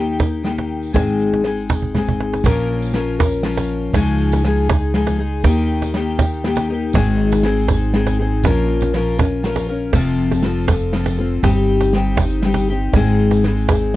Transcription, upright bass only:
0.00 0.92 D#2 medium
0.95 2.42 G#1 medium
2.44 3.91 A#1 loud
3.94 5.41 C#2 medium
5.44 6.91 D#2 loud
6.94 8.41 G#1 loud
8.44 9.91 A#1 medium
9.94 11.41 F1 medium
11.44 12.91 G1 medium
12.93 13.96 G#1 medium

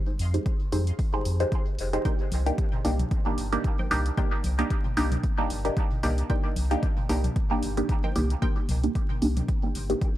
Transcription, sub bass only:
0.19 0.39 F2 loud
0.72 0.92 F2 medium
1.25 1.45 F2 medium
1.79 1.98 F1 medium
2.32 2.51 C2 loud
2.85 3.04 C2 medium
3.38 3.57 G1 medium
3.91 4.11 C2 medium
4.44 4.64 C2 loud
4.97 5.17 C2 medium
5.50 5.70 G1 medium
6.03 6.23 C2 medium
6.56 6.76 C2 loud
7.09 7.29 C2 medium
7.63 7.82 G1 medium
8.16 8.35 C2 medium
8.69 8.88 C2 loud
9.22 9.42 C2 medium
9.75 9.95 G1 medium

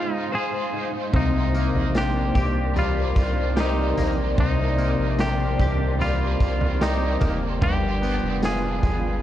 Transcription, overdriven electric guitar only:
0.00 0.29 G#3 medium
0.00 0.32 D#4 medium
0.00 0.33 F4 medium
0.00 0.62 G#4 medium
0.00 0.35 C5 medium
0.31 1.11 G#3 medium
0.31 1.13 D#4 medium
0.31 1.14 F4 medium
0.36 1.18 C5 medium
1.12 1.53 C3 medium
1.12 1.54 D#3 medium
1.12 1.53 A#3 medium
1.54 2.75 D#3 soft
1.54 2.76 A#3 soft
2.74 3.54 C3 medium
2.74 3.56 D#3 medium
2.78 3.57 A#3 medium
2.78 3.60 D4 medium
3.55 4.34 C3 medium
3.55 4.37 D#3 medium
3.55 4.39 A#3 medium
4.35 5.98 C3 medium
4.35 6.00 D#3 medium
4.42 6.01 A#3 medium
5.99 6.79 C3 medium
5.99 6.81 D#3 medium
5.99 6.82 A#3 medium
6.04 6.85 D4 medium
6.80 7.62 C3 medium
6.80 7.62 D#3 medium
6.84 7.63 A#3 medium
7.61 8.02 G2 medium
7.61 8.03 D3 medium
7.61 8.03 F3 medium
7.61 8.03 B3 medium
7.61 8.02 D4 medium
8.03 9.22 F3 soft
8.03 9.22 B3 soft
8.03 9.22 D4 soft

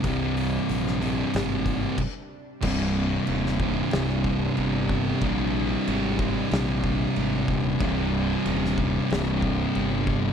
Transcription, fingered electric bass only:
0.04 0.57 C2 loud
0.69 1.22 A#1 medium
1.34 1.87 G#1 loud
2.63 3.16 C1 loud
3.28 3.81 D#1 medium
3.93 4.46 C1 loud
4.58 5.11 G1 medium
5.22 5.75 A#1 loud
5.87 6.40 G#1 loud
6.52 7.05 A#1 loud
7.17 7.43 G#1 medium
7.49 7.75 D#1 medium
7.80 8.33 C1 loud
8.46 8.99 D#1 loud
9.11 9.64 C1 loud
9.76 10.28 G1 medium

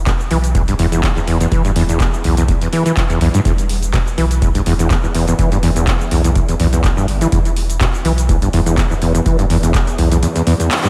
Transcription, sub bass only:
0.00 0.13 E1 loud
0.31 0.74 B1 medium
0.79 1.10 E1 medium
1.16 1.46 E1 medium
1.52 2.07 E1 loud
2.24 2.55 B1 medium
3.10 3.18 E1 loud
3.21 3.30 B1 medium
3.45 4.00 E1 loud
4.18 4.61 B1 medium
4.66 4.97 E1 loud
5.03 5.33 E1 medium
5.39 5.94 E1 loud
6.11 6.42 B1 medium
6.49 6.56 E1 medium
6.60 6.91 B1 medium
6.97 7.05 E1 medium
7.08 7.26 G1 medium
7.32 7.87 E1 loud
8.05 8.48 B1 medium
8.53 8.84 E1 medium
8.91 9.20 E1 medium
9.26 9.81 E1 loud
9.98 10.23 B1 medium

